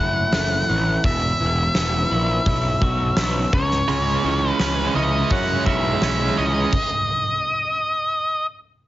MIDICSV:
0, 0, Header, 1, 6, 480
1, 0, Start_track
1, 0, Tempo, 710059
1, 708, Time_signature, 4, 2, 24, 8
1, 6002, End_track
2, 0, Start_track
2, 0, Title_t, "Lead electric guitar"
2, 0, Program_c, 0, 29
2, 0, Note_on_c, 0, 78, 87
2, 709, Note_off_c, 0, 78, 0
2, 711, Note_on_c, 0, 76, 87
2, 2392, Note_on_c, 0, 73, 93
2, 2441, Note_off_c, 0, 76, 0
2, 3054, Note_off_c, 0, 73, 0
2, 3054, Note_on_c, 0, 71, 93
2, 3345, Note_off_c, 0, 71, 0
2, 3348, Note_on_c, 0, 75, 86
2, 3592, Note_on_c, 0, 78, 87
2, 3596, Note_off_c, 0, 75, 0
2, 3822, Note_off_c, 0, 78, 0
2, 3825, Note_on_c, 0, 76, 102
2, 4311, Note_on_c, 0, 75, 86
2, 4321, Note_off_c, 0, 76, 0
2, 5719, Note_off_c, 0, 75, 0
2, 6002, End_track
3, 0, Start_track
3, 0, Title_t, "Clean electric guitar"
3, 0, Program_c, 1, 27
3, 0, Note_on_c, 1, 45, 70
3, 0, Note_on_c, 1, 64, 73
3, 229, Note_on_c, 1, 57, 68
3, 467, Note_on_c, 1, 52, 65
3, 709, Note_off_c, 1, 45, 0
3, 709, Note_off_c, 1, 57, 0
3, 711, Note_on_c, 1, 40, 70
3, 948, Note_off_c, 1, 52, 0
3, 951, Note_on_c, 1, 52, 71
3, 1196, Note_on_c, 1, 59, 67
3, 1426, Note_off_c, 1, 64, 0
3, 1429, Note_on_c, 1, 64, 74
3, 1668, Note_on_c, 1, 47, 70
3, 1671, Note_off_c, 1, 40, 0
3, 1673, Note_off_c, 1, 59, 0
3, 1908, Note_off_c, 1, 64, 0
3, 1910, Note_on_c, 1, 66, 75
3, 1931, Note_off_c, 1, 52, 0
3, 2147, Note_on_c, 1, 59, 65
3, 2386, Note_off_c, 1, 47, 0
3, 2388, Note_off_c, 1, 59, 0
3, 2389, Note_on_c, 1, 49, 61
3, 2390, Note_off_c, 1, 66, 0
3, 2622, Note_off_c, 1, 49, 0
3, 2630, Note_on_c, 1, 49, 71
3, 2867, Note_on_c, 1, 52, 67
3, 3108, Note_on_c, 1, 61, 63
3, 3351, Note_on_c, 1, 64, 73
3, 3583, Note_off_c, 1, 61, 0
3, 3591, Note_on_c, 1, 61, 71
3, 3825, Note_off_c, 1, 64, 0
3, 3829, Note_off_c, 1, 49, 0
3, 3833, Note_on_c, 1, 64, 77
3, 4068, Note_off_c, 1, 52, 0
3, 4070, Note_on_c, 1, 56, 68
3, 4310, Note_on_c, 1, 52, 67
3, 4549, Note_off_c, 1, 52, 0
3, 4549, Note_off_c, 1, 56, 0
3, 4549, Note_off_c, 1, 61, 0
3, 4550, Note_off_c, 1, 64, 0
3, 6002, End_track
4, 0, Start_track
4, 0, Title_t, "Overdriven electric guitar"
4, 0, Program_c, 2, 29
4, 2624, Note_on_c, 2, 49, 82
4, 2627, Note_on_c, 2, 56, 98
4, 2632, Note_on_c, 2, 61, 99
4, 2859, Note_off_c, 2, 49, 0
4, 2863, Note_off_c, 2, 56, 0
4, 2867, Note_on_c, 2, 49, 87
4, 2868, Note_off_c, 2, 61, 0
4, 2871, Note_on_c, 2, 56, 80
4, 2876, Note_on_c, 2, 61, 88
4, 3099, Note_off_c, 2, 49, 0
4, 3103, Note_off_c, 2, 56, 0
4, 3107, Note_off_c, 2, 61, 0
4, 3107, Note_on_c, 2, 49, 89
4, 3111, Note_on_c, 2, 56, 94
4, 3115, Note_on_c, 2, 61, 103
4, 3341, Note_off_c, 2, 49, 0
4, 3347, Note_off_c, 2, 56, 0
4, 3350, Note_off_c, 2, 61, 0
4, 3350, Note_on_c, 2, 49, 77
4, 3355, Note_on_c, 2, 56, 86
4, 3358, Note_on_c, 2, 61, 92
4, 3580, Note_off_c, 2, 49, 0
4, 3584, Note_off_c, 2, 56, 0
4, 3588, Note_on_c, 2, 49, 95
4, 3591, Note_off_c, 2, 61, 0
4, 3592, Note_on_c, 2, 56, 97
4, 3599, Note_on_c, 2, 61, 96
4, 3821, Note_off_c, 2, 49, 0
4, 3826, Note_off_c, 2, 56, 0
4, 3829, Note_on_c, 2, 49, 86
4, 3830, Note_off_c, 2, 61, 0
4, 3834, Note_on_c, 2, 56, 99
4, 3839, Note_on_c, 2, 61, 92
4, 4061, Note_off_c, 2, 49, 0
4, 4066, Note_off_c, 2, 56, 0
4, 4067, Note_off_c, 2, 61, 0
4, 4069, Note_on_c, 2, 49, 84
4, 4074, Note_on_c, 2, 56, 91
4, 4076, Note_on_c, 2, 61, 93
4, 4301, Note_off_c, 2, 49, 0
4, 4304, Note_off_c, 2, 56, 0
4, 4307, Note_off_c, 2, 61, 0
4, 4309, Note_on_c, 2, 49, 88
4, 4312, Note_on_c, 2, 56, 84
4, 4315, Note_on_c, 2, 61, 87
4, 4534, Note_off_c, 2, 49, 0
4, 4536, Note_off_c, 2, 56, 0
4, 4537, Note_off_c, 2, 61, 0
4, 6002, End_track
5, 0, Start_track
5, 0, Title_t, "Picked electric bass"
5, 0, Program_c, 3, 34
5, 0, Note_on_c, 3, 30, 86
5, 166, Note_off_c, 3, 30, 0
5, 233, Note_on_c, 3, 30, 82
5, 413, Note_off_c, 3, 30, 0
5, 471, Note_on_c, 3, 33, 86
5, 651, Note_off_c, 3, 33, 0
5, 704, Note_on_c, 3, 28, 96
5, 887, Note_off_c, 3, 28, 0
5, 949, Note_on_c, 3, 28, 75
5, 1131, Note_off_c, 3, 28, 0
5, 1191, Note_on_c, 3, 28, 79
5, 1372, Note_off_c, 3, 28, 0
5, 1431, Note_on_c, 3, 34, 85
5, 1612, Note_off_c, 3, 34, 0
5, 1666, Note_on_c, 3, 35, 93
5, 1849, Note_off_c, 3, 35, 0
5, 1903, Note_on_c, 3, 35, 92
5, 2087, Note_off_c, 3, 35, 0
5, 2146, Note_on_c, 3, 35, 82
5, 2329, Note_off_c, 3, 35, 0
5, 2386, Note_on_c, 3, 37, 87
5, 2569, Note_off_c, 3, 37, 0
5, 2629, Note_on_c, 3, 37, 84
5, 2811, Note_off_c, 3, 37, 0
5, 2867, Note_on_c, 3, 37, 88
5, 3049, Note_off_c, 3, 37, 0
5, 3110, Note_on_c, 3, 37, 83
5, 3292, Note_off_c, 3, 37, 0
5, 3348, Note_on_c, 3, 37, 80
5, 3530, Note_off_c, 3, 37, 0
5, 3587, Note_on_c, 3, 42, 97
5, 3769, Note_off_c, 3, 42, 0
5, 3828, Note_on_c, 3, 35, 92
5, 4010, Note_off_c, 3, 35, 0
5, 4073, Note_on_c, 3, 35, 91
5, 4253, Note_off_c, 3, 35, 0
5, 4314, Note_on_c, 3, 37, 91
5, 4493, Note_off_c, 3, 37, 0
5, 6002, End_track
6, 0, Start_track
6, 0, Title_t, "Drums"
6, 220, Note_on_c, 9, 38, 108
6, 220, Note_on_c, 9, 46, 55
6, 288, Note_off_c, 9, 38, 0
6, 288, Note_off_c, 9, 46, 0
6, 702, Note_on_c, 9, 46, 58
6, 703, Note_on_c, 9, 36, 102
6, 770, Note_off_c, 9, 46, 0
6, 771, Note_off_c, 9, 36, 0
6, 1182, Note_on_c, 9, 38, 100
6, 1182, Note_on_c, 9, 46, 49
6, 1250, Note_off_c, 9, 38, 0
6, 1250, Note_off_c, 9, 46, 0
6, 1662, Note_on_c, 9, 46, 49
6, 1664, Note_on_c, 9, 36, 98
6, 1729, Note_off_c, 9, 46, 0
6, 1732, Note_off_c, 9, 36, 0
6, 1904, Note_on_c, 9, 36, 81
6, 1971, Note_off_c, 9, 36, 0
6, 2141, Note_on_c, 9, 38, 107
6, 2141, Note_on_c, 9, 46, 55
6, 2209, Note_off_c, 9, 38, 0
6, 2209, Note_off_c, 9, 46, 0
6, 2386, Note_on_c, 9, 36, 102
6, 2454, Note_off_c, 9, 36, 0
6, 2508, Note_on_c, 9, 38, 33
6, 2576, Note_off_c, 9, 38, 0
6, 2625, Note_on_c, 9, 46, 51
6, 2693, Note_off_c, 9, 46, 0
6, 3106, Note_on_c, 9, 38, 101
6, 3106, Note_on_c, 9, 46, 50
6, 3174, Note_off_c, 9, 38, 0
6, 3174, Note_off_c, 9, 46, 0
6, 3584, Note_on_c, 9, 46, 52
6, 3588, Note_on_c, 9, 36, 100
6, 3651, Note_off_c, 9, 46, 0
6, 3655, Note_off_c, 9, 36, 0
6, 3829, Note_on_c, 9, 36, 89
6, 3896, Note_off_c, 9, 36, 0
6, 4068, Note_on_c, 9, 38, 101
6, 4068, Note_on_c, 9, 46, 50
6, 4136, Note_off_c, 9, 38, 0
6, 4136, Note_off_c, 9, 46, 0
6, 4547, Note_on_c, 9, 36, 105
6, 4547, Note_on_c, 9, 49, 87
6, 4615, Note_off_c, 9, 36, 0
6, 4615, Note_off_c, 9, 49, 0
6, 6002, End_track
0, 0, End_of_file